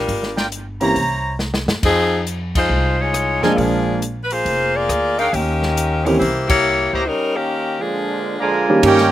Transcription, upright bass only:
0, 0, Header, 1, 2, 480
1, 0, Start_track
1, 0, Tempo, 437956
1, 83, Time_signature, 4, 2, 24, 8
1, 9992, End_track
2, 0, Start_track
2, 0, Title_t, "Upright bass"
2, 0, Program_c, 0, 32
2, 88, Note_on_c, 0, 31, 85
2, 1001, Note_off_c, 0, 31, 0
2, 1042, Note_on_c, 0, 36, 80
2, 1793, Note_off_c, 0, 36, 0
2, 1826, Note_on_c, 0, 42, 62
2, 1984, Note_off_c, 0, 42, 0
2, 2001, Note_on_c, 0, 41, 77
2, 2917, Note_off_c, 0, 41, 0
2, 2953, Note_on_c, 0, 36, 81
2, 3708, Note_off_c, 0, 36, 0
2, 3748, Note_on_c, 0, 41, 63
2, 3905, Note_off_c, 0, 41, 0
2, 3920, Note_on_c, 0, 34, 85
2, 4837, Note_off_c, 0, 34, 0
2, 4879, Note_on_c, 0, 29, 79
2, 5326, Note_off_c, 0, 29, 0
2, 5357, Note_on_c, 0, 38, 80
2, 5806, Note_off_c, 0, 38, 0
2, 5841, Note_on_c, 0, 39, 88
2, 6757, Note_off_c, 0, 39, 0
2, 6806, Note_on_c, 0, 36, 78
2, 7555, Note_off_c, 0, 36, 0
2, 7596, Note_on_c, 0, 37, 61
2, 7750, Note_off_c, 0, 37, 0
2, 9676, Note_on_c, 0, 43, 90
2, 9992, Note_off_c, 0, 43, 0
2, 9992, End_track
0, 0, End_of_file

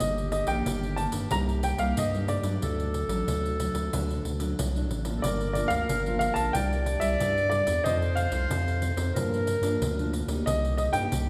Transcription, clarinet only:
0, 0, Header, 1, 2, 480
1, 0, Start_track
1, 0, Key_signature, -2, "minor"
1, 0, Tempo, 653595
1, 11, Time_signature, 4, 2, 24, 8
1, 8294, End_track
2, 0, Start_track
2, 0, Title_t, "Clarinet"
2, 0, Program_c, 0, 71
2, 4, Note_on_c, 0, 67, 109
2, 938, Note_off_c, 0, 67, 0
2, 968, Note_on_c, 0, 67, 100
2, 1936, Note_on_c, 0, 69, 94
2, 1947, Note_off_c, 0, 67, 0
2, 3613, Note_off_c, 0, 69, 0
2, 3793, Note_on_c, 0, 69, 71
2, 3860, Note_on_c, 0, 70, 103
2, 3871, Note_off_c, 0, 69, 0
2, 4818, Note_on_c, 0, 74, 117
2, 4829, Note_off_c, 0, 70, 0
2, 5762, Note_on_c, 0, 72, 115
2, 5773, Note_off_c, 0, 74, 0
2, 6711, Note_off_c, 0, 72, 0
2, 6715, Note_on_c, 0, 70, 104
2, 7455, Note_off_c, 0, 70, 0
2, 7684, Note_on_c, 0, 67, 103
2, 8294, Note_off_c, 0, 67, 0
2, 8294, End_track
0, 0, End_of_file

